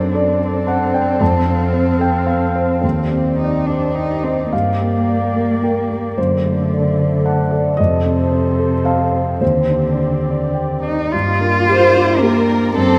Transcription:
0.00 1.16 F#2 soft
0.00 2.82 C4 soft
0.00 0.30 D4 soft
0.00 1.16 D4 soft
0.00 2.83 A4 medium
0.00 0.11 C5 medium
0.00 1.16 D5 medium
0.14 0.56 A4 soft
0.14 0.39 D5 medium
0.41 0.83 D5 soft
0.67 0.92 F#5 medium
0.67 1.10 A5 soft
0.93 1.20 D5 soft
0.93 1.19 G5 medium
1.21 2.80 F2 medium
1.21 4.54 C4 medium
1.21 2.84 F5 medium
1.21 1.97 A5 medium
1.46 1.89 C4 soft
1.73 2.17 C5 soft
1.99 2.43 A4 soft
1.99 2.26 G5 medium
2.27 2.79 F5 medium
2.27 2.72 A5 soft
2.56 2.80 C5 soft
2.81 4.49 D#2 soft
2.81 3.33 C4 soft
2.81 6.17 G4 soft
2.81 3.67 C5 medium
2.81 7.78 D5 medium
3.12 3.57 C4 soft
3.39 3.68 D#4 soft
3.39 3.85 D5 soft
3.66 3.96 D4 soft
3.66 4.13 C5 soft
3.95 4.25 D#4 soft
3.95 4.41 G5 soft
4.24 4.51 C4 soft
4.24 4.53 C5 soft
4.24 4.51 D#5 soft
4.52 6.13 G2 soft
4.52 6.20 A#3 soft
4.52 6.17 A#3 medium
4.52 5.59 F5 medium
4.81 5.25 A#3 soft
5.08 5.52 D5 soft
5.37 5.62 A#4 soft
5.63 5.88 A#4 soft
5.63 6.07 G5 soft
5.89 6.17 A#4 soft
6.18 7.75 F#2 soft
6.18 7.82 D3 soft
6.18 7.79 A3 medium
6.18 9.42 A4 medium
6.18 6.68 C5 medium
6.45 6.88 A3 soft
6.72 7.15 D5 soft
6.99 7.42 A4 soft
7.26 7.50 F#5 medium
7.26 7.68 A5 soft
7.51 7.79 A4 soft
7.51 7.76 D5 medium
7.77 9.38 F2 soft
7.77 9.42 C3 medium
7.77 11.13 C4 medium
7.77 9.41 C5 medium
7.77 8.80 D#5 medium
8.06 8.47 C4 soft
8.32 8.74 C5 soft
8.59 9.02 A4 soft
8.85 9.38 F5 medium
8.85 9.30 A5 soft
9.12 9.40 C5 soft
9.41 11.09 D#2 soft
9.41 10.82 D3 soft
9.41 11.11 G4 medium
9.41 9.97 C5 medium
9.41 11.12 D5 soft
9.70 10.16 D4 soft
9.99 10.44 C5 soft
10.28 10.73 D5 soft
10.55 11.01 G5 soft
10.83 11.14 D#4 medium
10.83 11.13 D5 soft
11.12 12.73 G2 soft
11.12 12.73 A#3 medium
11.12 12.24 F4 medium
11.12 12.73 G4 medium
11.12 12.99 D5 medium
11.41 11.66 D4 soft
11.41 11.66 A#4 soft
11.67 11.93 G4 soft
11.67 11.93 A#4 soft
11.67 12.18 C5 medium
11.95 12.20 D4 soft
12.22 12.75 A#3 medium
12.22 12.47 G4 soft
12.22 12.47 A#4 soft
12.22 12.77 A#4 soft
12.50 12.74 D4 soft
12.75 12.99 F#2 soft
12.75 12.99 A3 medium
12.75 12.99 C4 medium
12.75 12.99 A4 soft
12.75 12.99 A4 medium

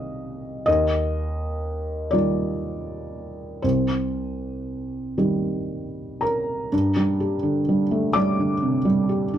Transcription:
0.00 0.64 D#3 soft
0.00 0.64 G3 soft
0.00 0.64 G4 soft
0.00 0.66 D#5 medium
0.66 2.10 D#2 medium
0.66 2.13 D#5 medium
2.11 3.59 D#3 soft
2.11 3.59 G3 soft
2.11 3.59 F4 soft
2.11 3.62 D5 medium
3.62 5.14 C2 soft
3.62 6.22 C5 medium
5.18 6.69 D#3 soft
5.18 6.69 G3 soft
5.18 6.69 G4 soft
6.21 8.13 A#4 soft
6.21 8.16 A#5 medium
6.72 9.38 G2 medium
6.96 7.35 G3 soft
7.20 7.59 G4 soft
7.43 7.82 D3 soft
7.69 8.07 G3 soft
7.91 8.16 A3 soft
8.13 8.54 G3 soft
8.13 9.38 D5 medium
8.13 9.38 D6 medium
8.39 8.77 D3 soft
8.62 8.86 C3 soft
8.85 9.24 G3 soft
9.09 9.38 G4 soft
9.34 9.38 D4 soft

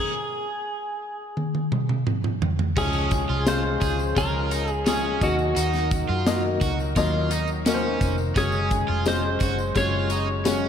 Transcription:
0.00 2.03 G#4 medium
1.37 high tom soft
1.55 high tom medium
1.72 mid tom medium
1.89 mid tom medium
2.07 mid tom medium
2.24 mid tom medium
2.42 floor tom medium
2.59 floor tom medium
2.76 3.26 C#2 loud
2.76 3.78 F3 medium
2.76 5.19 F3 medium
2.76 3.39 G#3 medium
2.76 3.10 C#4 medium
2.76 3.39 C#4 medium
2.76 5.20 C#4 medium
2.76 2.84 E4 soft
2.76 5.20 F4 medium
2.76 5.19 G#4 medium
2.76 3.48 G#4 medium
2.76 3.39 C#5 medium
2.76 kick loud
2.76 crash medium
2.76 tambourine soft
2.84 3.42 F4 medium
2.93 tambourine soft
3.11 kick loud
3.11 closed hi-hat medium
3.11 tambourine soft
3.29 3.78 C2 medium
3.29 3.63 F4 medium
3.47 4.08 G#3 medium
3.47 4.09 C#4 medium
3.47 4.09 F4 medium
3.47 4.17 C5 medium
3.47 4.09 F5 medium
3.47 snare loud
3.47 closed hi-hat medium
3.47 tambourine medium
3.81 4.14 C#2 medium
3.81 3.98 G#4 medium
3.81 kick medium
3.81 closed hi-hat medium
3.81 tambourine medium
3.99 tambourine soft
4.16 5.17 C#2 loud
4.16 4.78 G#3 medium
4.16 4.78 C#4 medium
4.16 4.50 F4 medium
4.16 4.79 F4 medium
4.16 4.71 A#4 medium
4.16 4.79 C#5 medium
4.16 kick medium
4.16 closed hi-hat medium
4.16 tambourine medium
4.51 4.68 D#4 medium
4.51 closed hi-hat medium
4.51 tambourine medium
4.68 4.88 G#4 medium
4.68 tambourine soft
4.86 5.21 G#3 medium
4.86 5.35 C#4 medium
4.86 5.22 C#4 medium
4.86 5.22 F4 medium
4.86 5.22 G#4 medium
4.86 5.23 G#4 medium
4.86 snare loud
4.86 closed hi-hat medium
4.86 tambourine medium
5.21 5.54 D#2 medium
5.21 8.33 D#3 medium
5.21 6.22 D#3 medium
5.21 8.33 F#3 medium
5.21 6.14 A#3 medium
5.21 6.14 D#4 medium
5.21 8.33 D#4 medium
5.21 6.14 F#4 medium
5.21 6.58 F#4 medium
5.21 8.33 A#4 medium
5.21 6.14 D#5 medium
5.21 kick loud
5.21 closed hi-hat medium
5.21 tambourine medium
5.39 tambourine soft
5.56 6.05 D#2 loud
5.56 5.89 D#4 medium
5.56 closed hi-hat medium
5.56 tambourine soft
5.73 snare soft
5.73 tambourine soft
5.91 kick medium
5.91 closed hi-hat medium
5.91 tambourine soft
6.09 6.58 F#2 medium
6.09 6.42 F4 medium
6.26 6.88 A#3 medium
6.26 6.88 D#4 medium
6.26 6.88 F#4 medium
6.26 6.88 D#5 loud
6.26 snare loud
6.26 closed hi-hat medium
6.26 tambourine medium
6.61 6.94 C#2 medium
6.61 6.78 F#4 medium
6.61 kick medium
6.61 closed hi-hat medium
6.61 tambourine medium
6.79 tambourine soft
6.96 7.97 D#2 medium
6.96 7.58 F#3 medium
6.96 7.58 A#3 medium
6.96 7.58 D#4 medium
6.96 7.30 F4 medium
6.96 7.58 D#5 medium
6.96 kick medium
6.96 closed hi-hat medium
6.96 tambourine soft
7.31 7.48 D#4 medium
7.31 closed hi-hat medium
7.31 tambourine medium
7.48 tambourine soft
7.66 8.28 A#3 medium
7.66 8.15 C#4 medium
7.66 8.28 D#4 medium
7.66 8.28 F#4 medium
7.66 7.73 A#4 medium
7.66 snare loud
7.66 closed hi-hat medium
7.66 tambourine medium
7.74 8.32 C5 medium
8.01 8.33 F1 medium
8.01 kick medium
8.01 closed hi-hat medium
8.01 tambourine medium
8.18 tambourine soft
8.35 8.85 F#1 loud
8.35 10.69 F#3 medium
8.35 8.98 G#3 medium
8.35 10.69 G#3 medium
8.35 8.69 C#4 medium
8.35 10.69 C#4 medium
8.35 8.98 C#4 medium
8.35 8.98 F#4 medium
8.35 9.07 G#4 medium
8.35 8.98 C#5 medium
8.35 kick loud
8.35 closed hi-hat loud
8.35 tambourine soft
8.52 tambourine soft
8.71 kick loud
8.71 closed hi-hat medium
8.71 tambourine soft
8.88 9.37 F1 medium
8.88 9.21 F4 medium
9.06 9.67 G#3 medium
9.06 9.68 C#4 medium
9.06 9.68 F#4 medium
9.06 9.77 C5 medium
9.06 9.68 D#5 medium
9.06 snare loud
9.06 closed hi-hat medium
9.06 tambourine medium
9.40 9.73 F#1 medium
9.40 9.57 F#4 medium
9.40 kick medium
9.40 closed hi-hat medium
9.40 tambourine medium
9.58 tambourine soft
9.75 10.69 F#1 medium
9.75 10.38 F#3 medium
9.75 10.37 G#3 medium
9.75 10.37 C#4 medium
9.75 10.09 F4 medium
9.75 10.38 C#5 medium
9.75 10.69 C#5 medium
9.75 kick medium
9.75 closed hi-hat medium
9.75 tambourine soft
10.10 10.27 D#4 medium
10.10 closed hi-hat medium
10.10 tambourine soft
10.45 10.69 G#3 medium
10.45 10.69 C#4 medium
10.45 10.69 F#4 medium
10.45 10.69 C#5 medium
10.45 snare loud
10.45 closed hi-hat medium
10.45 tambourine medium

